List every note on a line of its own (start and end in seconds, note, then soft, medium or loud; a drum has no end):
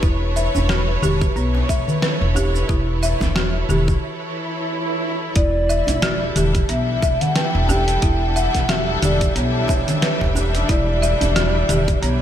0.00 0.46 E1 loud
0.00 5.34 E3 medium
0.00 12.22 E4 medium
0.00 0.35 E4 medium
0.00 5.36 A4 medium
0.00 5.36 B4 medium
0.00 5.36 C#5 medium
0.00 kick loud
0.00 cabasa soft
0.36 0.47 E5 medium
0.36 djembe slap soft
0.36 cabasa medium
0.55 0.96 E1 medium
0.55 djembe slap medium
0.55 djembe bass medium
0.55 cabasa soft
0.69 0.80 F#4 medium
0.69 snare loud
0.69 cabasa soft
1.02 1.28 E1 medium
1.02 1.35 G4 medium
1.02 djembe tone soft
1.02 low conga medium
1.02 cabasa medium
1.21 kick loud
1.21 cabasa soft
1.36 1.61 B1 medium
1.36 1.68 B3 medium
1.36 cabasa soft
1.55 djembe slap medium
1.69 1.83 E1 medium
1.69 1.80 E5 loud
1.69 kick medium
1.69 cabasa medium
1.88 low conga medium
1.88 cabasa soft
2.02 2.34 B4 medium
2.02 snare loud
2.02 cabasa soft
2.21 2.63 E1 medium
2.35 2.68 G4 medium
2.35 djembe tone medium
2.35 djembe bass medium
2.35 cabasa medium
2.54 djembe slap soft
2.54 cabasa soft
2.69 3.13 E1 medium
2.69 3.01 E4 medium
2.69 kick loud
2.69 cabasa soft
3.02 3.13 E5 loud
3.02 djembe slap soft
3.02 cabasa medium
3.21 3.63 E1 medium
3.21 kick medium
3.21 snare soft
3.21 djembe slap medium
3.21 djembe bass medium
3.21 cabasa soft
3.36 3.47 F#4 medium
3.36 snare loud
3.36 cabasa soft
3.69 3.94 E1 medium
3.69 4.01 G4 medium
3.69 djembe tone soft
3.69 low conga medium
3.69 cabasa medium
3.88 kick loud
3.88 cabasa soft
4.02 swell medium
5.35 5.79 E1 loud
5.35 12.22 E3 medium
5.35 5.68 E4 medium
5.35 6.32 D5 loud
5.35 kick loud
5.35 closed hi-hat medium
5.35 cabasa soft
5.69 5.80 E5 medium
5.69 cabasa medium
5.74 12.22 E5 medium
5.87 6.29 E1 medium
5.87 closed hi-hat soft
5.87 djembe bass medium
5.87 cabasa soft
5.98 12.15 A4 medium
6.02 6.13 F#4 medium
6.02 snare loud
6.02 closed hi-hat medium
6.02 cabasa soft
6.13 12.22 G3 medium
6.36 6.61 E1 medium
6.36 6.68 G4 medium
6.36 closed hi-hat medium
6.36 djembe slap soft
6.36 djembe tone soft
6.36 low conga medium
6.36 cabasa medium
6.44 12.22 D4 medium
6.55 kick loud
6.55 closed hi-hat soft
6.55 cabasa soft
6.69 6.94 B1 medium
6.69 7.01 B3 medium
6.69 7.23 E5 loud
6.69 closed hi-hat medium
6.69 cabasa soft
7.02 7.16 E1 medium
7.02 7.13 E5 loud
7.02 kick loud
7.02 cabasa medium
7.21 7.37 F#5 loud
7.21 closed hi-hat soft
7.21 low conga medium
7.21 cabasa soft
7.36 7.68 B4 medium
7.36 7.69 G5 loud
7.36 snare loud
7.36 closed hi-hat medium
7.36 cabasa soft
7.55 7.96 E1 loud
7.69 8.01 G4 medium
7.69 8.37 G5 loud
7.69 djembe slap soft
7.69 djembe tone medium
7.69 djembe bass medium
7.69 cabasa medium
7.88 closed hi-hat soft
7.88 cabasa soft
8.02 8.46 E1 medium
8.02 8.34 E4 medium
8.02 kick loud
8.02 closed hi-hat medium
8.02 cabasa soft
8.36 8.47 E5 loud
8.36 8.71 F#5 loud
8.36 cabasa medium
8.55 8.96 E1 medium
8.55 kick medium
8.55 snare soft
8.55 closed hi-hat soft
8.55 cabasa soft
8.69 8.80 F#4 medium
8.69 9.02 E5 medium
8.69 snare loud
8.69 closed hi-hat medium
8.69 cabasa soft
9.02 9.28 E1 medium
9.02 9.34 G4 medium
9.02 9.34 D5 medium
9.02 closed hi-hat medium
9.02 djembe slap soft
9.02 djembe tone soft
9.02 low conga medium
9.02 cabasa medium
9.21 kick loud
9.21 closed hi-hat soft
9.21 cabasa soft
9.36 9.61 B1 loud
9.36 9.68 B3 medium
9.36 10.32 C#5 medium
9.36 closed hi-hat medium
9.36 cabasa soft
9.68 9.83 E1 medium
9.68 9.80 E5 loud
9.68 kick loud
9.68 djembe slap medium
9.68 djembe tone soft
9.68 cabasa medium
9.88 closed hi-hat soft
9.88 djembe tone medium
9.88 low conga medium
9.88 cabasa soft
10.02 10.34 B4 medium
10.02 snare loud
10.02 closed hi-hat medium
10.02 cabasa soft
10.21 10.63 E1 loud
10.21 kick medium
10.21 djembe slap medium
10.35 10.68 G4 medium
10.35 djembe slap medium
10.35 djembe bass medium
10.35 cabasa medium
10.55 closed hi-hat soft
10.55 djembe tone medium
10.55 cabasa soft
10.69 11.13 E1 loud
10.69 11.01 E4 medium
10.69 11.99 D5 medium
10.69 kick loud
10.69 closed hi-hat medium
10.69 cabasa soft
11.02 11.13 E5 loud
11.02 cabasa medium
11.21 11.63 E1 medium
11.21 closed hi-hat soft
11.21 djembe bass medium
11.21 cabasa soft
11.36 11.47 F#4 medium
11.36 snare loud
11.36 closed hi-hat medium
11.36 cabasa soft
11.69 11.94 E1 medium
11.69 12.01 G4 medium
11.69 closed hi-hat medium
11.69 djembe slap soft
11.69 djembe tone soft
11.69 low conga medium
11.69 cabasa medium
11.88 kick loud
11.88 closed hi-hat soft
11.88 cabasa soft
11.95 12.22 B4 medium
12.02 12.22 B1 medium
12.02 12.22 B3 medium
12.02 12.22 C#5 loud
12.02 closed hi-hat medium
12.02 cabasa soft